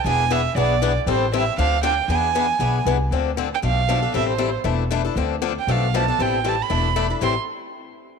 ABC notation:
X:1
M:4/4
L:1/8
Q:"Swing" 1/4=234
K:Am
V:1 name="Violin"
^g2 e2 d3 z | c2 e2 f2 g2 | ^g6 z2 | z3 g f4 |
e c2 z4 z | z3 g f2 a2 | g2 a b4 z | c' z6 z |]
V:2 name="Steel-string acoustic guitar"
[E,B,D^G] z [E,B,DG] z [E,B,DG] z [E,B,DG] z | [E,G,CEA] z [E,G,CEA] z [D,F,CDA] z [D,F,CDA] z | [E,B,D^G] z [E,B,DG] z [E,B,DG] z [E,B,DG] z | [D,F,CDA] z [D,F,CDA] z [B,,F,A,DA] z [B,,F,A,DA] [A,DA] |
[E,G,CEA] z [E,G,CEA] z [E,A,DEA] z [E,A,DEA] [DEA] | [D,F,CDA] z [D,F,CDA] z [B,,F,A,DA] z [B,,F,A,DA] [A,DA] | [E,G,CEA] z [E,G,CEA] z [E,A,DEA] z [E,A,DEA] [DE] | [A,,E,G,CEA] z6 z |]
V:3 name="Upright bass" clef=bass
E,,,4 B,,,4 | A,,,4 D,,4 | E,,4 B,,,2 C,,2 | D,,4 B,,,4 |
A,,,4 E,,,4 | D,,4 B,,,4 | A,,,4 E,,,4 | A,,, z6 z |]